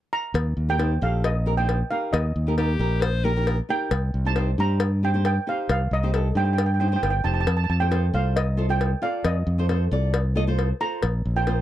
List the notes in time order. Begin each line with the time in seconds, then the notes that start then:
Already playing: G5
0.13 A#5
0.34 D#2, cowbell
0.57 D#2
0.69 D#4 G4 A#4 G5
0.78 D#4 G4 C5, cowbell
1.01 A#1 D#4 G4 A4 F5
1.24 D#5, cowbell
1.46 D#4 G4 A#4
1.57 D#4 G4 C5 G5
1.69 cowbell
1.90 D#4 G4 A#4 F5
2.13 D#2 D#5, cowbell
2.36 D#2
2.47 D#4 G4 A#4
2.58 D#4 G4 A#4, cowbell
2.79 A#1 D#4 G4 A#4
3.01 C5, cowbell
3.24 D#4 G4 A#4
3.36 D#4 G4 A#4
3.47 cowbell
3.69 D#4 G4 A#4 G5
3.91 C2, cowbell
4.14 C2
4.25 D#4 G4 C5 A5
4.36 D#4 G4 C5, cowbell
4.58 G2 D#4 G4 C5 A#5
4.80 cowbell
5.03 D#4 G4 C5 G5
5.14 D#4 G4 C5
5.25 G5, cowbell
5.47 D#4 G4 C5 F5
5.69 C2 F5, cowbell
5.91 C2 D#5
6.03 D#4 G4 C5
6.13 D#4 G4 A4, cowbell
6.35 G2 D#4 G4 C5 G5
6.45 G5
6.53 G5
6.58 G5, cowbell
6.66 G5
6.74 G5
6.80 D#4 G4 C5 G5
6.88 D#4 G5
6.92 G4 C5 G5
7.03 G1 G5, cowbell
7.10 G5
7.24 F1 D#4 G4 C5 A5
7.34 A5
7.41 A5
7.47 F2 A5, cowbell
7.57 A5
7.64 A5
7.69 F2 A5
7.80 F4 A4 C5 G5
7.91 F4 A4 C5, cowbell
8.13 C2 F4 A4 C5 F5
8.36 D#5, cowbell
8.57 F4 A4 C5
8.69 F4 A4 C5 G5
8.81 cowbell
9.02 F4 A4 D5 F5
9.24 F2 D#5, cowbell
9.47 F2
9.58 F4 A4 C5
9.69 F4 A4 C5, cowbell
9.91 C2 F4 A4 D5
10.14 cowbell
10.35 F4 A4 D#5
10.47 F4 A4 C5
10.59 cowbell
10.80 F4 A4 C5 A#5
11.03 A#1, cowbell
11.25 A#1
11.36 F4 A#4 C5 G5
11.47 F4 A#4 C5, cowbell